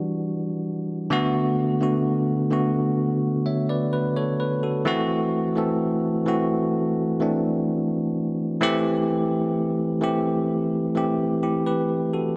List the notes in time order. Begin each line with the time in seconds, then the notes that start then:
Already playing: E3 G3 D4 F#4
1.10 D3 A3 B3 F#4
1.80 D3 A3 B3 F#4
2.51 D3 A3 B3 F#4
3.46 C#5 E5
3.69 B4 D5
3.93 B4
4.16 A4 C#5
4.40 B4
4.63 F#4 A4
4.85 E3 A3 C4 F#4
5.56 E3 A3 C4 A4
6.26 E3 A3 C4 F#4
7.20 E3 A3 C4 D4
8.61 E3 A3 C4 G4
10.01 E3 A3 C4 G4
10.95 E3 A3 C4 G4
11.43 E4 G4
11.66 G4 B4
12.13 F#4 A4